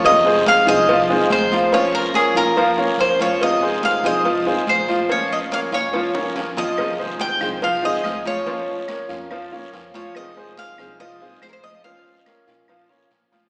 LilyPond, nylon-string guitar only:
\new Staff \with { instrumentName = "Nylon-string guitar" } { \time 4/4 \key f \minor \tempo 4 = 142 <c ees aes c' f'>4. <ees aes c' f'>8 r8 <ees aes c' f'>8 <ees aes c' f'>4 | <f bes des' f'>4. <bes des' f'>8 r8 <bes des' f'>8 <f bes des' f'>4 | <c ees aes c' f'>4. <ees aes c' f'>8 r8 <ees aes c' f'>8 <ees aes c' f'>4 | <f bes des' f'>4. <bes des' f'>8 r8 <bes des' f'>8 <f bes des' f'>4 |
<c ees aes c' f'>4. <ees aes c' f'>8 r8 <ees aes c' f'>8 <ees aes c' f'>4 | <f bes des' f'>4. <bes des' f'>8 r8 <bes des' f'>8 <f bes des' f'>4 | <c ees aes c' f'>4. <ees aes c' f'>8 r8 <ees aes c' f'>8 <ees aes c' f'>4 | <f bes des' f'>4. <bes des' f'>8 r8 <bes des' f'>8 <f bes des' f'>4 | }